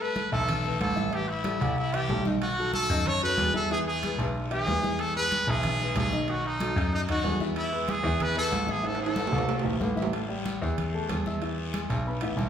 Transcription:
0.00 A3 A4 B4, high conga
0.16 high conga, high timbale, short guiro
0.32 B1 E3 E4 A4 E5, short guiro
0.48 high conga, low conga, high timbale, long guiro
0.64 A3 A4 B4, high conga, low conga
0.80 A1 A4, high conga, high timbale, short guiro
0.96 E3 E4 E5, high conga, short guiro
1.11 E3 E4 G4 E5, high conga, high timbale, long guiro
1.29 E4, high conga
1.44 G3 G4 A4, high conga, high timbale, short guiro
1.60 C2 G3 G4 A4, high conga, high timbale, short guiro
1.76 E4, high conga, long guiro
1.93 E3 E4 G4 E5, high conga, high timbale
2.09 B1 G3 G4 A4, high conga, low timbale, short guiro
2.25 D#3 D#4 D#5, high conga, short guiro
2.42 F#4, high conga, high timbale
2.58 F#3 F#4 A4, high conga
2.74 A4, high conga, high timbale, short guiro
2.90 F#2 D#3 D#4 D#5, short guiro
3.05 C#5, high conga, low conga, high timbale, long guiro
3.22 F#3 F#4 A4 B4, high conga
3.38 E2, high conga, high timbale, short guiro
3.54 E3 E4 A4 E5, high conga, short guiro
3.70 E3 E4 G#4 E5, high conga, high timbale, long guiro
3.87 G#4, high conga
4.02 G#3 G#4 B4, high conga, high timbale, short guiro
4.18 B1 G#3 G#4 B4, high conga, high timbale, short guiro
4.35 high conga, long guiro
4.51 E3 E4 G#4 E5, high conga, high timbale
4.66 E2 G#3 G#4 B4, high conga, low timbale, short guiro
4.83 E3 E4 E5, high conga, short guiro
4.99 A4, high conga, high timbale, long guiro
5.15 G#3 G#4 B4, high conga
5.31 high conga, high timbale, short guiro
5.47 B1 E3 E4 G#4 E5, short guiro
5.63 high conga, low conga, high timbale, long guiro
5.81 G#3 G#4 B4, high conga
5.95 B1 G#4, high conga, high timbale, low timbale, short guiro
6.12 D#3 D#4 D#5, high conga, short guiro
6.27 D#3 D#4 F#4 D#5, high conga, high timbale, long guiro
6.44 D#4, high conga
6.60 F#3 F#4 A4, high conga, high timbale, short guiro
6.76 F#2 F#3 F#4, high conga, high timbale, short guiro
6.92 D#4, high conga, long guiro
7.09 F#2 D#3 D#4 F#4 D#5, high conga, high timbale
7.24 E2 F#3 F#4 A4, high conga, short guiro
7.40 E3 E4 E5, high conga, short guiro
7.56 E4, high conga, high timbale, long guiro
7.72 G#3 G#4 B4
7.88 G#4, high conga, high timbale, short guiro
8.03 E2 E3 E4 E5, short guiro
8.20 B4, high conga, low conga, high timbale
8.36 B3 E4 A4 B4, high conga
8.51 A1, high conga, high timbale, short guiro
8.67 E3 E4 E5, high conga, short guiro
8.71 G#4
8.83 E3 E4 A4 E5, high conga, high timbale, long guiro
8.95 high timbale
9.00 A4, high conga
9.06 high timbale
9.15 A3 A4 B4, high conga, high timbale, short guiro
9.27 low timbale
9.32 C2 A3 A4 B4, high conga, short guiro
9.38 low timbale
9.49 high conga, low timbale, long guiro
9.59 low timbale
9.64 B1 E3 E4 E5, high conga
9.70 low timbale
9.80 A1 A3 A4 B4, high conga, short guiro
9.95 E3 E4 E5, high conga, short guiro
10.02 low timbale
10.13 A3 A4 A5, high conga, high timbale, long guiro
10.29 G3 G4 G5, high conga
10.46 high conga, high timbale, short guiro
10.62 E2 E4 E5 E6, short guiro
10.78 high conga, low conga, high timbale, long guiro
10.94 A3 A4 A5, high conga
11.09 E2, high conga, high timbale, short guiro
11.26 E4 E5 E6, high conga, short guiro
11.41 E3 E4 E5, high conga, high timbale, long guiro
11.59 high conga
11.74 G#3 G#4 G#5, high conga, high timbale, short guiro
11.90 B1, high conga, high timbale, short guiro
12.06 B3 B4 B5, high conga, long guiro
12.21 A1 E3 E4 E5, high conga, high timbale
12.37 B1, high conga, short guiro

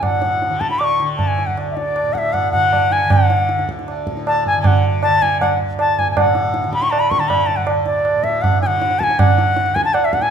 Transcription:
Already playing: D2 D3
0.00 A2 F#5, tabla na, tabla ge
0.22 tabla te
0.42 tabla te
0.49 D3, tabla te
0.60 A5, tabla ke
0.71 B5, tabla te
0.79 D6, tabla na
0.84 C#6
1.00 D3, tabla te
1.07 C#6
1.17 A5, tabla na, tabla ge
1.27 G#5
1.38 tabla te
1.46 F#5, tabla ge
1.51 D2
1.57 tabla na
1.71 E5
1.76 D5, tabla te
1.96 tabla na
2.03 A2
2.13 F#5, tabla ke
2.18 E5
2.33 F#5, tabla na, tabla ge
2.52 D3 F#5, tabla ge
2.73 tabla na, tabla ge
2.91 G#5, tabla te
3.04 D3
3.10 F#5, tabla na, tabla ge
3.30 tabla te
3.49 tabla te
3.56 D2, tabla te
3.69 tabla ke
3.79 tabla te
3.88 tabla na
4.06 A2, tabla ke
4.17 tabla te
4.27 A5, tabla na
4.45 G#5, tabla tin, tabla ge
4.56 D3
4.62 G#5, tabla na, tabla ge
4.66 F#5
5.03 A5, tabla na
5.07 D3
5.22 G#5, tabla tin, tabla ge
5.41 F#5, tabla na, tabla ge
5.58 D2
5.79 A5, tabla na
5.99 G#5, tabla tin, tabla ge
6.07 A2 G#5
6.17 A2 F#5, tabla na, tabla ge
6.35 tabla te
6.54 tabla te
6.64 D3, tabla te
6.73 B5, tabla ke
6.82 C#6, tabla te
6.91 A5, tabla na
7.00 B5
7.11 C#6, tabla ke
7.17 D3 A5
7.21 tabla te
7.28 B5, tabla na, tabla ge
7.46 A5, tabla te
7.56 F#5, tabla ge
7.66 D2, tabla na
7.85 D5, tabla te
8.05 tabla na
8.15 A2
8.23 E5, tabla ke
8.42 F#5, tabla na, tabla ge
8.62 G#5, tabla te
8.66 D3 F#5
8.82 tabla te
8.91 tabla te
8.99 A5, tabla ke
9.03 G#5
9.10 tabla te
9.17 D3 F#5, tabla na, tabla ge
9.38 tabla te
9.56 tabla te
9.66 D2, tabla te
9.75 G#5, tabla ke
9.85 A5, tabla te
9.94 F#5, tabla na
10.05 E5
10.13 A2 F#5, tabla ke
10.22 G#5, tabla te

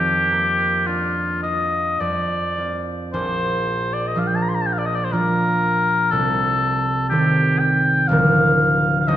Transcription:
Already playing: F2 G4
0.32 A#3
0.87 D4 F4
1.43 F4 D#5
2.00 F2 D5
2.58 C4 F4
3.13 A#1 A#2 C5
3.94 D5
4.07 D#5
4.15 F3 D4 F4 F5
4.27 G5
4.36 A5
4.42 A#5
4.49 C6
4.55 A#5
4.61 A5
4.66 G5
4.73 F5
4.78 D5
4.85 D#5
4.95 D5
5.05 C5
5.12 F3 D4 F4 A#4
6.11 C2 C3 A4
7.10 D#3 C4 G4 A4
7.59 G5
8.08 D1 D2 F3 A#4 F5
8.13 A#3
9.01 F5
9.08 D#1 D#2 D#5

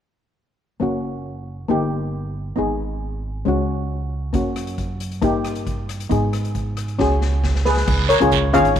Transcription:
0.80 F#1 A#3 C#4 F#4
1.69 G1 A#3 D#4 G4
2.56 G#1 B3 D#4 G#4
3.45 C#2 G#3 C#4 F#4
4.33 F#2 A#3 C#4 F#4, kick, closed hi-hat
4.56 cross-stick, closed hi-hat
4.67 closed hi-hat
4.78 kick, closed hi-hat
5.00 closed hi-hat
5.12 closed hi-hat
5.22 G2 A#3 D#4 G4, kick, closed hi-hat
5.45 cross-stick, closed hi-hat
5.55 closed hi-hat
5.67 kick, closed hi-hat
5.89 cross-stick, closed hi-hat
6.00 closed hi-hat
6.10 G#2 B3 D#4 G#4, kick, closed hi-hat
6.33 cross-stick, closed hi-hat
6.45 closed hi-hat
6.55 kick, closed hi-hat
6.77 cross-stick, closed hi-hat
6.88 closed hi-hat
6.99 C#2 C#4 F#4 G#4, kick, snare
7.21 snare
7.44 kick, snare
7.55 snare
7.65 G#4 B4, snare
7.77 snare
7.88 C#2, kick, crash, long guiro
8.09 A#4 C#5, cross-stick, closed hi-hat
8.20 C#2 C#4 F4 G#4, closed hi-hat
8.32 kick, closed hi-hat, short guiro
8.53 G#1 C#4 F4 G#4 C#5 F5, closed hi-hat
8.65 closed hi-hat
8.76 C#2, kick, closed hi-hat, long guiro

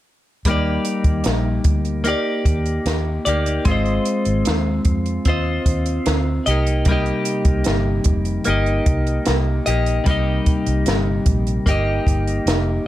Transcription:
0.45 D#2 G3 A#3 D#4, kick, closed hi-hat
0.50 G4 D5
0.85 closed hi-hat
1.04 D#2, kick, closed hi-hat
1.24 A#1, snare, closed hi-hat
1.64 D2, kick, closed hi-hat
1.85 closed hi-hat
2.04 A#3 D#4 G4, closed hi-hat
2.09 D5
2.45 D#2, kick, closed hi-hat
2.66 closed hi-hat
2.86 D#2, snare, closed hi-hat
3.25 D2 A#3 D#4 G4 D5, closed hi-hat
3.46 closed hi-hat
3.65 G#1 G#3 C4 F4, kick, closed hi-hat
3.70 C5 D#5
3.86 closed hi-hat
4.05 closed hi-hat
4.25 G#1, closed hi-hat
4.45 D#2, snare, closed hi-hat
4.85 F2, kick, closed hi-hat
5.06 closed hi-hat
5.25 D#2 C4 F4 C5, kick, closed hi-hat
5.29 D#5
5.66 D#2, kick, closed hi-hat
5.86 closed hi-hat
6.06 D2, snare, closed hi-hat
6.46 C2 D#4 G4 D#5, closed hi-hat
6.51 A#3
6.67 closed hi-hat
6.85 C3 G3 A#3, kick, closed hi-hat
6.90 D#4 G4 D#5
7.06 closed hi-hat
7.25 closed hi-hat
7.45 C2, kick, closed hi-hat
7.64 G1, snare, closed hi-hat
8.04 F1, kick, closed hi-hat
8.25 closed hi-hat
8.44 G1 A#3 D#4 G4, closed hi-hat
8.50 D#5
8.66 closed hi-hat
8.86 C2, kick, closed hi-hat
9.07 closed hi-hat
9.26 C2, snare, closed hi-hat
9.66 A#1 D#4 G4 D#5, closed hi-hat
9.70 A#3
9.86 closed hi-hat
10.04 C2 C3 G3 A#3, kick, closed hi-hat
10.09 D#4 G4 D#5
10.46 kick, closed hi-hat
10.66 C2, closed hi-hat
10.86 G1, snare, closed hi-hat
11.26 A#1, kick, closed hi-hat
11.47 closed hi-hat
11.66 G1 A#3 D#4 G4, kick, closed hi-hat
11.70 D#5
12.07 G1, kick, closed hi-hat
12.28 closed hi-hat
12.46 F1, snare, closed hi-hat

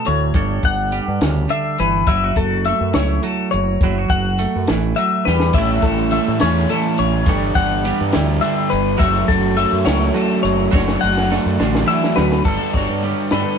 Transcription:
Already playing: A3 F#4
0.05 D2 A2 C#5, closed hi-hat
0.34 G1 G2 A4, kick, closed hi-hat
0.63 G1 F#5, kick, closed hi-hat
0.92 G3, closed hi-hat
1.08 G2
1.21 D2 C#3, snare, closed hi-hat
1.49 D3 E5, closed hi-hat
1.79 G1 E3 B4, closed hi-hat
2.07 F#1 F#3 E4 E5, kick, closed hi-hat
2.24 F#4
2.36 F#1 A4, kick, closed hi-hat
2.65 A3 E5, closed hi-hat
2.81 F#2
2.93 C#2 E4 C#5, snare, closed hi-hat
3.23 F#3 A4, closed hi-hat
3.51 F#1 C#5, closed hi-hat
3.81 F#1 F#3 E4, kick, closed hi-hat
3.98 F#4
4.10 F#1 F#5, kick, closed hi-hat
4.39 A3, closed hi-hat
4.56 F#2
4.67 A1 E3, snare, closed hi-hat
4.96 F#3 E5, closed hi-hat
5.25 E2 G3 B4, snare
5.40 snare
5.53 A1 A2 E3 G3 C#4 E4 E5, kick, closed hi-hat
5.57 A2 E4
5.71 F#4
5.81 A1 G3 C#4 E4 A4, kick, closed hi-hat
6.11 E3 G3 A3 C#4 E4 E5, closed hi-hat
6.28 A2
6.40 E2 A2 E3 G3 C#4 E4 C#5, snare, closed hi-hat
6.69 E3 G3 C#4 E4 A4, closed hi-hat
6.98 A1 C#5, closed hi-hat
7.26 G1 G2 G3 B3 D4 G4 A4, kick, closed hi-hat
7.55 G1 B3 D4 G4 F#5, kick, closed hi-hat
7.85 G3 B3 D4 G4, closed hi-hat
8.01 G2
8.13 D2 G3 B3 D4 E4 G4, snare, closed hi-hat
8.41 D3 G3 B3 D4 G4 E5, closed hi-hat
8.70 G1 B4, closed hi-hat
8.97 F#1 F#3 A3 C#4 F#4 E5, kick, closed hi-hat
9.28 F#1 A3 C#4 F#4 A4, kick, closed hi-hat
9.56 F#3 A3 C#4 F#4 E5, closed hi-hat
9.73 F#2
9.85 C#2 F#3 A3 C#4 E4 F#4 C#5, snare, closed hi-hat
10.14 F#3 A3 C#4 F#4 A4, closed hi-hat
10.43 F#1 C#5, closed hi-hat
10.71 F#1 F#3 A3 D4 F#4 C#5, kick, snare
10.88 snare
11.00 F#1 A3 D4 F#4 F#5
11.17 snare
11.30 F#3 A3 D4 F#4, snare
11.46 F#2
11.59 A1 D3 F#3 A3 D4 F#4, snare
11.75 snare
11.86 E3 F#3 A3 D4 F#4 E5
12.04 snare
12.16 D2 F#3 B4, snare
12.32 snare
12.44 G1 G2 D3 G3 B3 D4 A4, kick, crash
12.48 A4
12.74 G1 D3 G3 B3 D4 F#4 C#5, kick, closed hi-hat
12.90 G2
13.02 D3 G3 B3 D4, closed hi-hat
13.30 G2 D3 G3 B3 D4 A4 B4, snare, closed hi-hat

